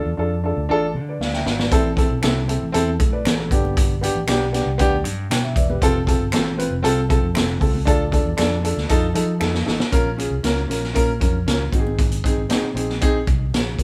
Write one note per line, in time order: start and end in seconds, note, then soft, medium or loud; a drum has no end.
0.05 0.17 E2 medium
0.17 0.52 F2 medium
0.17 0.32 D4 medium
0.17 0.33 F4 medium
0.17 0.33 A4 medium
0.44 0.58 D4 medium
0.44 0.59 F4 medium
0.44 0.59 A4 medium
0.57 0.68 D2 medium
0.68 0.96 A1 medium
0.68 0.84 D4 loud
0.68 0.84 F4 loud
0.68 0.85 A4 loud
0.95 1.17 D3 medium
1.09 1.21 B4 medium
1.09 1.20 D5 medium
1.19 1.42 D2 medium
1.19 1.33 D5 medium
1.19 1.33 F5 medium
1.19 snare medium
1.33 1.46 E5 medium
1.33 1.46 G5 medium
1.33 snare medium
1.45 1.68 G#1 medium
1.45 1.58 D5 medium
1.45 1.59 F5 medium
1.45 snare medium
1.59 1.84 B4 medium
1.59 1.83 D5 medium
1.59 snare medium
1.71 2.05 A1 loud
1.71 1.86 C4 loud
1.71 1.87 E4 loud
1.71 1.87 A4 loud
1.71 kick loud
1.71 closed hi-hat medium
1.71 muted conga soft
1.96 2.11 C4 medium
1.96 2.12 E4 medium
1.96 2.12 A4 loud
1.96 kick loud
1.96 closed hi-hat medium
1.96 muted conga soft
2.10 2.21 B1 medium
2.22 2.57 C2 medium
2.22 2.37 C4 medium
2.22 2.38 E4 medium
2.22 2.38 A4 medium
2.22 finger snap medium
2.22 snare loud
2.22 closed hi-hat medium
2.22 high conga medium
2.48 2.63 C4 medium
2.48 2.63 E4 medium
2.48 2.64 A4 medium
2.48 closed hi-hat medium
2.62 2.73 A1 medium
2.72 2.96 E2 medium
2.72 2.88 C4 loud
2.72 2.89 E4 loud
2.72 2.89 A4 loud
2.72 closed hi-hat medium
2.99 3.22 A2 loud
2.99 3.12 A4 medium
2.99 kick loud
2.99 closed hi-hat medium
2.99 low conga medium
3.12 3.25 B4 medium
3.12 3.25 D5 medium
3.25 3.48 A1 medium
3.25 3.36 A4 medium
3.25 3.38 C5 medium
3.25 finger snap medium
3.25 snare loud
3.25 closed hi-hat medium
3.25 high conga medium
3.38 3.62 A4 medium
3.51 4.07 G1 loud
3.51 3.92 B3 medium
3.51 3.92 D4 medium
3.51 3.93 G4 medium
3.51 kick medium
3.51 closed hi-hat medium
3.65 high conga medium
3.77 kick loud
3.77 closed hi-hat medium
3.77 muted conga soft
4.01 4.17 B3 medium
4.01 4.17 D4 medium
4.01 4.17 G4 loud
4.01 closed hi-hat medium
4.01 muted conga soft
4.15 4.26 A1 medium
4.27 4.61 B1 medium
4.27 4.42 B3 medium
4.27 4.43 D4 medium
4.27 4.43 G4 loud
4.27 finger snap medium
4.27 snare loud
4.27 closed hi-hat medium
4.27 high conga medium
4.52 4.68 B3 medium
4.52 4.68 D4 medium
4.52 4.68 G4 medium
4.52 snare soft
4.52 closed hi-hat medium
4.66 4.77 C2 medium
4.78 5.04 D2 medium
4.78 4.93 B3 loud
4.78 4.94 D4 loud
4.78 4.94 G4 loud
4.78 kick medium
4.78 closed hi-hat medium
5.04 5.27 G2 medium
5.04 closed hi-hat medium
5.04 muted conga soft
5.04 low conga medium
5.30 5.53 B2 medium
5.30 5.54 G5 medium
5.30 finger snap medium
5.30 snare loud
5.30 closed hi-hat loud
5.30 high conga medium
5.43 5.55 E5 medium
5.56 5.79 E1 loud
5.56 5.68 B4 medium
5.56 5.68 D5 medium
5.56 5.80 E5 medium
5.56 kick medium
5.56 closed hi-hat medium
5.70 5.94 G4 medium
5.70 5.94 B4 medium
5.70 high conga medium
5.81 6.16 F1 loud
5.81 5.96 C4 loud
5.81 5.97 F4 loud
5.81 5.97 A4 loud
5.81 kick loud
5.81 closed hi-hat medium
5.81 muted conga medium
6.06 6.22 C4 medium
6.06 6.22 F4 medium
6.06 6.23 A4 loud
6.06 kick medium
6.06 closed hi-hat medium
6.06 muted conga soft
6.19 6.31 G1 medium
6.32 6.67 A1 medium
6.32 6.47 C4 loud
6.32 6.48 F4 medium
6.32 6.48 A4 loud
6.32 finger snap medium
6.32 snare loud
6.32 closed hi-hat medium
6.32 high conga medium
6.57 6.73 C4 medium
6.57 6.73 F4 medium
6.57 6.73 B4 medium
6.57 closed hi-hat medium
6.70 6.82 F1 loud
6.83 7.18 C2 loud
6.83 6.98 C4 loud
6.83 6.99 F4 loud
6.83 6.99 A4 loud
6.83 closed hi-hat medium
7.09 7.24 C4 medium
7.09 7.25 F4 medium
7.09 7.25 A4 loud
7.09 kick loud
7.09 closed hi-hat medium
7.09 low conga medium
7.22 7.34 F2 medium
7.34 7.58 F1 medium
7.34 7.50 C4 medium
7.34 7.50 F4 medium
7.34 7.51 A4 medium
7.34 finger snap medium
7.34 snare loud
7.34 closed hi-hat medium
7.34 high conga medium
7.59 7.84 C#2 medium
7.59 7.75 C4 medium
7.59 7.76 F4 medium
7.59 7.76 A4 medium
7.59 kick medium
7.59 open hi-hat soft
7.75 high conga medium
7.85 8.21 D2 loud
7.85 8.01 D4 loud
7.85 8.02 F4 loud
7.85 8.02 A4 loud
7.85 kick loud
7.85 closed hi-hat medium
7.85 muted conga medium
8.12 8.27 D4 medium
8.12 8.27 F4 medium
8.12 8.28 A4 medium
8.12 kick medium
8.12 closed hi-hat medium
8.12 muted conga soft
8.25 8.37 E2 medium
8.37 8.72 F2 medium
8.37 8.53 D4 loud
8.37 8.53 F4 medium
8.37 8.53 A4 loud
8.37 finger snap medium
8.37 snare loud
8.37 closed hi-hat medium
8.37 high conga medium
8.63 8.78 D4 medium
8.63 8.79 F4 medium
8.63 8.79 A4 medium
8.63 closed hi-hat medium
8.77 8.88 D2 medium
8.77 snare soft
8.89 9.12 F2 loud
8.89 9.04 D#4 loud
8.89 9.05 F4 loud
8.89 9.05 A4 loud
8.89 kick loud
8.89 closed hi-hat medium
9.13 9.38 F3 medium
9.13 9.29 D#4 medium
9.13 9.30 F4 medium
9.13 9.30 A4 medium
9.13 closed hi-hat medium
9.13 low conga medium
9.39 9.63 F2 medium
9.39 9.55 D#4 medium
9.39 9.55 F4 medium
9.39 9.56 A4 medium
9.39 finger snap medium
9.39 snare medium
9.39 high conga medium
9.55 snare medium
9.65 9.78 A1 medium
9.65 9.81 D#4 medium
9.65 9.81 F4 medium
9.65 9.81 A4 medium
9.65 snare medium
9.80 snare medium
9.80 high conga medium
9.91 10.26 A#1 loud
9.91 10.07 C#4 loud
9.91 10.07 F4 loud
9.91 10.07 A#4 loud
9.91 kick loud
9.91 closed hi-hat medium
9.91 muted conga soft
10.17 10.32 C#4 medium
10.17 10.33 F4 medium
10.17 10.33 G#4 loud
10.17 closed hi-hat medium
10.17 muted conga soft
10.30 10.42 C2 medium
10.43 10.66 C#2 medium
10.43 10.58 C#4 medium
10.43 10.59 F4 medium
10.43 10.59 A#4 loud
10.43 snare medium
10.43 closed hi-hat medium
10.43 high conga medium
10.68 10.92 A#1 medium
10.68 10.84 C#4 medium
10.68 10.84 F4 medium
10.68 10.85 A#4 medium
10.68 snare soft
10.68 closed hi-hat medium
10.84 snare soft
10.93 11.18 A#2 loud
10.93 11.09 C#4 loud
10.93 11.10 F4 loud
10.93 11.10 A#4 loud
10.93 kick medium
10.93 closed hi-hat medium
10.93 low conga medium
11.20 11.44 F2 medium
11.20 11.35 C#4 medium
11.20 11.36 F4 medium
11.20 11.36 A#4 medium
11.20 kick loud
11.20 closed hi-hat medium
11.20 muted conga soft
11.20 low conga medium
11.46 11.69 C#2 medium
11.46 11.62 C#4 medium
11.46 11.62 F4 medium
11.46 11.62 A#4 medium
11.46 snare loud
11.46 closed hi-hat medium
11.46 high conga medium
11.72 12.29 G#1 medium
11.72 12.13 C4 medium
11.72 12.14 D#4 medium
11.72 11.79 F#4 medium
11.72 kick medium
11.72 closed hi-hat medium
11.79 12.17 G#4 medium
11.87 high conga medium
11.99 kick loud
11.99 closed hi-hat medium
11.99 muted conga medium
12.12 closed hi-hat medium
12.24 12.39 C4 medium
12.24 12.39 D#4 medium
12.24 12.40 G#4 medium
12.24 kick medium
12.24 closed hi-hat medium
12.24 muted conga soft
12.36 12.48 G#1 medium
12.49 12.64 C4 medium
12.49 12.65 D#4 medium
12.49 12.65 G#4 loud
12.49 snare loud
12.49 closed hi-hat medium
12.49 high conga medium
12.62 muted fingered electric bass stroke soft
12.74 12.98 A#1 medium
12.74 12.90 C4 medium
12.74 12.91 D#4 medium
12.74 12.91 G#4 medium
12.74 closed hi-hat medium
12.89 snare soft
13.01 13.16 C4 loud
13.01 13.16 D#4 loud
13.01 13.17 G#4 loud
13.01 kick loud
13.01 closed hi-hat medium
13.14 muted fingered electric bass stroke soft
13.27 13.50 C2 medium
13.27 kick loud
13.27 closed hi-hat medium
13.27 muted conga soft
13.27 low conga medium
13.52 13.75 A#1 medium
13.52 13.78 F4 medium
13.52 13.78 G#4 medium
13.52 snare loud
13.52 closed hi-hat medium
13.52 high conga medium
13.79 13.83 F1 medium
13.79 13.83 F#4 medium
13.79 13.83 A#4 medium
13.79 kick medium
13.79 closed hi-hat medium